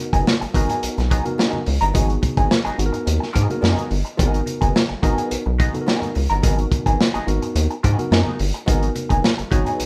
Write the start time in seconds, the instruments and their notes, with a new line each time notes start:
Already playing: tine electric piano B3 D#4 F#4 A#4
0.13 analog synth bass F#1, hollow-body jazz guitar F#3 B3 D#4 G#4, kick, closed hi-hat
0.27 muted hollow-body jazz guitar stroke, snare, muted conga, high conga
0.41 analog synth bass G#1, muted hollow-body jazz guitar stroke, closed hi-hat, muted conga
0.54 analog synth bass G#1, hollow-body jazz guitar F#3 B3 D#4 G#4, tine electric piano B3 D#4 F#4 A#4, kick, closed hi-hat
0.69 hollow-body jazz guitar F#3 B3 D#4 G#4, closed hi-hat, low conga
0.83 analog synth bass B1, closed hi-hat
0.97 analog synth bass B1, muted hollow-body jazz guitar stroke, snare, closed hi-hat, muted conga
1.11 hollow-body jazz guitar F#3 B3 D#4 G#4, kick, closed hi-hat
1.24 tine electric piano B3 D#4 F#4 A#4, muted hollow-body jazz guitar stroke, closed hi-hat, high conga
1.38 hollow-body jazz guitar F#3 B3 D#4 G#4, snare, muted conga
1.53 muted conga, high conga, low conga
1.66 analog synth bass C#2, muted hollow-body jazz guitar stroke, open hi-hat
1.81 analog synth bass G1, hollow-body jazz guitar F#3 B3 D#4 A#4, closed hi-hat
1.93 analog synth bass G#1, hollow-body jazz guitar F#3 B3 D#4 G#4, tine electric piano A#3 D#4 F#4 G#4, kick, closed hi-hat, muted conga, low conga
2.00 tine electric piano B3
2.09 muted hollow-body jazz guitar stroke, closed hi-hat
2.22 muted hollow-body jazz guitar stroke, kick, closed hi-hat, high conga
2.37 analog synth bass G#1, hollow-body jazz guitar F#3 B3 D#4 G#4, kick, closed hi-hat
2.50 muted hollow-body jazz guitar stroke, snare, muted conga, high conga
2.65 analog synth bass G#1, hollow-body jazz guitar F#3 B3 D#4 G#4, closed hi-hat, muted conga
2.78 analog synth bass G#1, tine electric piano B3 D#4 F#4 G#4, muted hollow-body jazz guitar stroke, closed hi-hat
2.86 tine electric piano A#4
2.93 muted hollow-body jazz guitar stroke, closed hi-hat, low conga
3.06 analog synth bass D#2, muted hollow-body jazz guitar stroke, closed hi-hat
3.20 muted hollow-body jazz guitar stroke, snare, muted conga
3.33 analog synth bass G#2, hollow-body jazz guitar F#3 B3 D#4 G#4, tine electric piano G#4, kick, closed hi-hat
3.48 tine electric piano A#3 D#4 F#4 A#4, muted hollow-body jazz guitar stroke, closed hi-hat, high conga
3.56 tine electric piano B3
3.61 analog synth bass F#2, hollow-body jazz guitar F3 A#3 D4 G4, tine electric piano D#5, snare, muted conga
3.72 hollow-body jazz guitar F#3 B3 D#4 G#4
3.77 closed hi-hat, high conga, low conga
3.90 analog synth bass G1, muted hollow-body jazz guitar stroke, open hi-hat
4.05 muted hollow-body jazz guitar stroke, closed hi-hat
4.17 analog synth bass G#1, hollow-body jazz guitar F#3 B3 D#4 G#4, tine electric piano B3 D#4 F#4 G#4, kick, closed hi-hat, muted conga, low conga
4.26 tine electric piano A#4
4.34 closed hi-hat, muted conga
4.46 muted hollow-body jazz guitar stroke, closed hi-hat, high conga
4.61 analog synth bass F#1, hollow-body jazz guitar F#3 B3 D#4 G#4, kick, closed hi-hat
4.75 muted hollow-body jazz guitar stroke, snare, high conga
4.89 analog synth bass G#1, muted hollow-body jazz guitar stroke
5.02 analog synth bass G#1, hollow-body jazz guitar F#3 B3 D#4 G#4, tine electric piano B3 D#4 F#4 A#4, kick, closed hi-hat
5.18 hollow-body jazz guitar F#3 B3 D#4 G#4, closed hi-hat, low conga
5.31 analog synth bass B1, closed hi-hat, muted conga
5.46 analog synth bass B1, muted hollow-body jazz guitar stroke, muted conga
5.58 hollow-body jazz guitar F#3 B3 D#4 G#4, kick, closed hi-hat
5.73 tine electric piano B3 D#4 F#4 A4, muted hollow-body jazz guitar stroke, closed hi-hat, high conga
5.81 tine electric piano A#4
5.86 hollow-body jazz guitar F#3 B3 D#4 G#4, snare, muted conga
6.02 closed hi-hat, high conga, low conga
6.15 analog synth bass C#2, muted hollow-body jazz guitar stroke, open hi-hat
6.30 analog synth bass G1, hollow-body jazz guitar F#3 B3 D#4 A#4, closed hi-hat
6.42 analog synth bass G#1, hollow-body jazz guitar F#3 B3 D#4 G#4, tine electric piano B3 D#4 F#4 A#4, kick, closed hi-hat, low conga
6.57 muted hollow-body jazz guitar stroke, closed hi-hat, muted conga
6.71 muted hollow-body jazz guitar stroke, kick, closed hi-hat, high conga
6.86 analog synth bass G#1, hollow-body jazz guitar F#3 B3 D#4 G#4, kick, closed hi-hat
7.00 muted hollow-body jazz guitar stroke, snare, high conga
7.14 analog synth bass G#1, hollow-body jazz guitar F#3 B3 D#4 G#4, closed hi-hat
7.27 analog synth bass G#1, tine electric piano B3 D#4 F#4 A#4, muted hollow-body jazz guitar stroke, closed hi-hat
7.42 muted hollow-body jazz guitar stroke, closed hi-hat, low conga
7.55 analog synth bass D#2, muted hollow-body jazz guitar stroke, closed hi-hat
7.71 muted hollow-body jazz guitar stroke, closed hi-hat
7.83 analog synth bass G#2, hollow-body jazz guitar F#3 B3 D#4 G#4, kick, closed hi-hat
7.98 tine electric piano B3 D#4 F#4 A#4, muted hollow-body jazz guitar stroke, closed hi-hat, high conga
8.11 analog synth bass F#2, hollow-body jazz guitar F#3 B3 D#4 G#4, snare
8.27 muted conga, high conga, low conga
8.39 analog synth bass G1, muted hollow-body jazz guitar stroke, open hi-hat
8.54 muted hollow-body jazz guitar stroke, closed hi-hat
8.66 analog synth bass G#1, hollow-body jazz guitar F#3 B3 D#4 G#4, tine electric piano B3 D#4 F#4 A#4, kick, closed hi-hat, low conga
8.83 closed hi-hat
8.95 muted hollow-body jazz guitar stroke, closed hi-hat, high conga
9.09 analog synth bass F#1, hollow-body jazz guitar F#3 B3 D#4 G#4, kick, closed hi-hat
9.23 muted hollow-body jazz guitar stroke, snare, muted conga, high conga
9.38 analog synth bass G#1, muted hollow-body jazz guitar stroke, closed hi-hat, muted conga
9.51 analog synth bass G#1, hollow-body jazz guitar F#3 B3 D#4 G#4, tine electric piano B3 D#4 F#4 C#5, kick, closed hi-hat
9.66 hollow-body jazz guitar F#3 B3 D#4 G#4, closed hi-hat, low conga
9.80 analog synth bass B1, closed hi-hat, muted conga